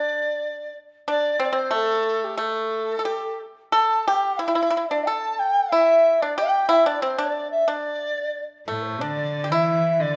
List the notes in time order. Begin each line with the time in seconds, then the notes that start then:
Already playing: D4 D5
1.08 D4 D5
1.40 C4 C5
1.45 D5
1.53 C4 C5
1.71 A3 A4
2.24 G4
2.38 A3 A4
2.99 A4
3.05 G4
3.72 A4 A5
4.08 G4 G5
4.39 E4 E5
4.48 E4
4.55 E4
4.62 E4
4.70 E4
4.77 E4
4.89 D4 D5
5.06 A4 A5
5.39 G5
5.71 E4 E5
6.21 D4 D5
6.37 G4 G5
6.69 E4 E5
6.86 D4 D5
7.01 C4 C5
7.18 D4 D5
7.51 E5
7.68 D4 D5
8.67 A2 A3 A4
8.82 C5
9.00 D3 D4 D5
9.44 G4
9.49 E3 E4 E5
9.99 D3 D5